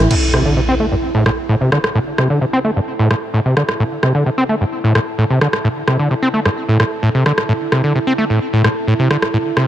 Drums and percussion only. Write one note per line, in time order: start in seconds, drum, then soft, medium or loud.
0.11 crash medium
0.34 cross-stick medium
1.26 cross-stick medium
1.72 cross-stick medium
1.84 cross-stick medium
2.18 cross-stick medium
3.11 cross-stick medium
3.57 cross-stick medium
3.69 cross-stick medium
4.03 cross-stick medium
4.95 cross-stick medium
5.41 cross-stick medium
5.53 cross-stick medium
5.88 cross-stick medium
6.46 cross-stick medium
6.80 cross-stick medium
7.26 cross-stick medium
7.38 cross-stick medium
7.72 cross-stick medium
8.64 cross-stick medium
9.11 cross-stick loud
9.22 cross-stick loud
9.57 cross-stick medium